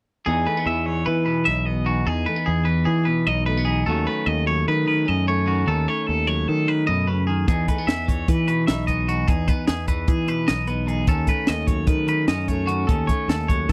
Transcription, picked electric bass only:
0.27 0.46 E2 medium
0.66 1.04 E2 medium
1.07 1.44 E3 medium
1.48 2.03 B1 medium
2.07 2.25 E2 medium
2.48 2.84 E2 medium
2.87 3.24 E3 medium
3.27 3.83 B1 medium
3.88 4.06 D#2 medium
4.27 4.64 D#2 medium
4.68 5.05 D#3 loud
5.09 5.64 F#2 medium
5.67 5.86 D#2 medium
6.09 6.45 D#2 medium
6.49 6.85 D#3 medium
6.89 7.44 F#2 medium
7.48 7.66 E2 medium
7.88 8.25 E2 medium
8.29 8.66 E3 medium
8.69 9.24 B1 medium
9.29 9.47 E2 medium
9.69 10.06 E2 medium
10.09 10.46 E3 medium
10.50 11.05 B1 medium
11.08 11.27 D#2 medium
11.49 11.86 D#2 medium
11.87 12.25 D#3 medium
12.28 12.84 F#2 medium
12.89 13.07 D#2 medium
13.28 13.66 D#2 medium
13.69 13.72 D#3 medium

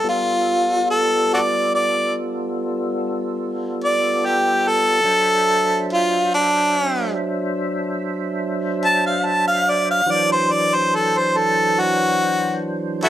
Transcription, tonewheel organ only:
0.04 5.01 G3 medium
0.04 5.01 B3 medium
0.04 5.01 F4 medium
0.04 5.01 A4 medium
5.04 10.02 F#3 medium
5.04 10.02 D4 medium
5.04 10.02 C5 medium
5.04 10.02 E5 medium
10.06 13.09 E3 medium
10.06 13.09 F#3 medium
10.06 13.09 D4 medium
10.06 13.09 C5 medium

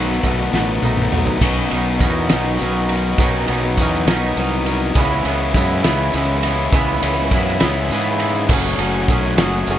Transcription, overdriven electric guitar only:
0.00 0.24 B2 medium
0.00 0.22 D#3 medium
0.00 0.24 A3 medium
0.00 0.25 B3 medium
0.00 0.26 F#4 medium
0.23 0.81 D#3 medium
0.23 0.55 A3 medium
0.23 0.53 B3 medium
0.23 0.51 F#4 medium
0.53 0.82 A3 medium
0.53 0.83 B3 medium
0.53 0.84 F#4 medium
0.82 1.40 D#3 medium
0.82 1.14 A3 medium
0.82 1.13 B3 medium
0.82 1.11 F#4 medium
1.12 1.42 A3 medium
1.12 1.41 B3 medium
1.12 1.40 F#4 medium
1.42 3.20 B2 medium
1.42 1.99 F#3 medium
1.42 1.74 B3 medium
1.42 1.73 D#4 medium
1.42 1.71 F#4 medium
1.71 2.01 B3 medium
1.71 2.01 D#4 medium
1.71 2.02 F#4 medium
1.99 2.59 F#3 medium
1.99 2.33 B3 medium
1.99 2.31 D#4 medium
1.99 2.29 F#4 medium
2.30 2.61 B3 medium
2.30 2.62 D#4 medium
2.30 2.63 F#4 medium
2.60 3.19 F#3 medium
2.60 2.93 B3 medium
2.60 2.90 D#4 medium
2.60 2.88 F#4 medium
2.90 3.22 B3 medium
2.90 3.22 D#4 medium
2.90 3.22 F#4 medium
3.20 3.79 B2 medium
3.20 3.78 F#3 medium
3.20 3.53 B3 loud
3.20 3.51 D#4 medium
3.20 3.49 F#4 loud
3.50 3.80 B3 medium
3.50 3.80 D#4 medium
3.50 3.82 F#4 medium
3.79 4.37 F#3 medium
3.79 4.12 B3 medium
3.79 4.09 D#4 medium
3.79 4.07 F#4 medium
4.08 4.40 D#4 medium
4.08 4.40 F#4 medium
4.12 4.39 B3 medium
4.38 4.95 F#3 medium
4.38 4.70 B3 medium
4.38 4.68 D#4 medium
4.38 4.66 F#4 medium
4.67 4.97 B3 medium
4.67 4.96 D#4 medium
4.67 4.95 F#4 medium
4.96 6.71 C#3 medium
4.96 5.54 E3 medium
4.96 5.29 G#3 medium
4.96 5.27 C#4 medium
5.00 5.26 E4 loud
5.26 5.55 G#3 medium
5.26 5.57 C#4 medium
5.26 5.57 E4 medium
5.54 6.13 E3 medium
5.54 5.88 G#3 medium
5.54 5.86 C#4 medium
5.54 5.84 E4 medium
5.85 6.15 G#3 medium
5.85 6.17 C#4 medium
5.85 6.16 E4 medium
6.14 6.72 E3 medium
6.14 6.46 G#3 medium
6.14 6.45 C#4 medium
6.14 6.42 E4 medium
6.43 6.73 G#3 medium
6.43 6.74 C#4 medium
6.43 6.74 E4 medium
6.71 7.32 C#3 medium
6.71 7.30 E3 loud
6.71 7.05 G#3 medium
6.71 7.03 C#4 medium
6.76 7.01 E4 medium
7.02 7.32 G#3 medium
7.02 7.33 C#4 medium
7.02 7.33 E4 medium
7.31 7.90 E3 medium
7.31 7.64 G#3 medium
7.31 7.63 C#4 medium
7.31 7.60 E4 medium
7.61 7.93 G#3 medium
7.61 7.94 C#4 medium
7.61 7.95 E4 medium
7.91 8.49 E3 medium
7.91 8.24 G#3 medium
7.91 8.22 C#4 medium
7.96 8.19 E4 medium
8.20 8.53 C#4 medium
8.20 8.48 E4 medium
8.24 8.52 G#3 medium
8.50 9.79 F#2 medium
8.50 9.10 C#3 medium
8.50 8.84 F#3 medium
8.50 8.83 A3 loud
8.50 8.81 C#4 medium
8.50 8.80 F#4 medium
8.80 9.09 F#3 medium
8.80 9.11 A3 medium
8.80 9.11 C#4 medium
8.80 9.13 F#4 medium
9.10 9.41 F#3 medium
9.10 9.41 A3 medium
9.10 9.40 C#4 medium
9.10 9.37 F#4 medium
9.39 9.70 A3 medium
9.39 9.71 C#4 medium
9.39 9.71 F#4 medium
9.43 9.67 F#3 medium
9.68 9.79 F#3 medium
9.68 9.79 A3 medium
9.68 9.79 C#4 medium
9.68 9.79 F#4 medium

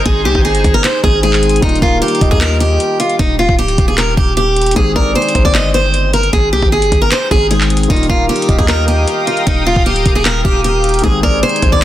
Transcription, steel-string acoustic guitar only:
0.06 0.21 G#4 medium
0.25 0.40 G4 medium
0.45 0.72 G#4 medium
0.74 0.82 A#4 medium
0.84 0.99 C5 medium
1.04 1.19 G#4 medium
1.23 1.60 G#4 medium
1.62 1.78 D#4 medium
1.82 1.97 F4 medium
2.02 2.29 G4 medium
2.31 2.39 G#4 medium
2.41 2.56 A#4 medium
2.60 2.97 G4 medium
3.00 3.15 F4 medium
3.19 3.35 D#4 medium
3.39 3.54 F4 medium
3.59 3.86 G4 medium
3.88 3.96 G#4 medium
3.98 4.13 A#4 medium
4.17 4.33 G4 medium
4.37 4.74 G4 medium
4.76 4.91 G#4 medium
4.96 5.11 A#4 medium
5.16 5.43 C5 medium
5.45 5.53 D5 medium
5.55 5.70 D#5 medium
5.74 6.11 C5 medium
6.14 6.29 A#4 medium
6.33 6.48 G#4 medium
6.53 6.68 G4 medium
6.72 7.00 G#4 medium
7.02 7.09 A#4 medium
7.12 7.27 C5 medium
7.31 7.46 G#4 medium
7.51 7.88 G#4 medium
7.90 8.05 D#4 medium
8.10 8.25 F4 medium
8.29 8.57 G4 medium
8.59 8.66 G#4 medium
8.68 8.84 A#4 medium
8.88 9.25 G4 medium
9.27 9.42 F4 medium
9.47 9.62 D#4 medium
9.66 9.82 F4 medium
9.86 10.14 G4 medium
10.15 10.23 G#4 medium
10.25 10.41 A#4 medium
10.45 10.60 G4 medium
10.64 11.01 G4 medium
11.04 11.19 G#4 medium
11.23 11.38 A#4 medium
11.43 11.71 C5 medium
11.72 11.80 D5 medium

